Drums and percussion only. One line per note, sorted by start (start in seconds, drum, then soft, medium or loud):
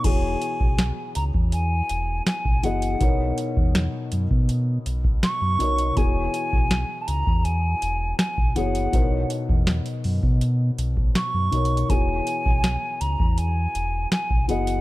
0.04 kick loud
0.04 closed hi-hat medium
0.04 crash loud
0.42 closed hi-hat medium
0.61 kick medium
0.78 snare loud
0.78 closed hi-hat medium
1.15 closed hi-hat medium
1.34 kick medium
1.52 closed hi-hat medium
1.89 closed hi-hat medium
2.27 snare loud
2.27 closed hi-hat medium
2.45 kick medium
2.63 closed hi-hat medium
2.63 open hi-hat medium
2.82 closed hi-hat medium
3.01 kick loud
3.01 closed hi-hat medium
3.38 closed hi-hat medium
3.57 kick loud
3.75 snare loud
3.75 closed hi-hat medium
4.12 closed hi-hat medium
4.31 kick medium
4.49 closed hi-hat medium
4.86 closed hi-hat medium
5.04 kick medium
5.23 snare loud
5.23 closed hi-hat medium
5.60 closed hi-hat medium
5.60 open hi-hat medium
5.78 closed hi-hat medium
5.97 kick loud
5.97 closed hi-hat medium
6.34 closed hi-hat medium
6.53 kick medium
6.71 snare loud
6.71 closed hi-hat medium
7.08 closed hi-hat medium
7.27 kick loud
7.45 closed hi-hat medium
7.82 closed hi-hat medium
8.19 snare loud
8.19 closed hi-hat medium
8.38 kick medium
8.56 closed hi-hat medium
8.56 open hi-hat medium
8.75 closed hi-hat medium
8.93 kick loud
8.93 closed hi-hat medium
9.30 closed hi-hat medium
9.49 kick loud
9.67 snare loud
9.67 closed hi-hat medium
9.86 closed hi-hat medium
10.04 open hi-hat medium
10.23 kick loud
10.41 closed hi-hat medium
10.78 closed hi-hat medium
10.97 kick medium
11.15 snare loud
11.15 closed hi-hat medium
11.52 closed hi-hat medium
11.52 open hi-hat medium
11.65 closed hi-hat medium
11.77 closed hi-hat medium
11.90 kick loud
11.90 closed hi-hat medium
12.27 closed hi-hat medium
12.46 kick loud
12.64 snare loud
12.64 closed hi-hat medium
13.01 closed hi-hat medium
13.20 kick loud
13.38 closed hi-hat medium
13.75 closed hi-hat medium
14.12 snare loud
14.12 closed hi-hat medium
14.30 kick medium
14.49 closed hi-hat medium
14.49 open hi-hat medium
14.67 closed hi-hat medium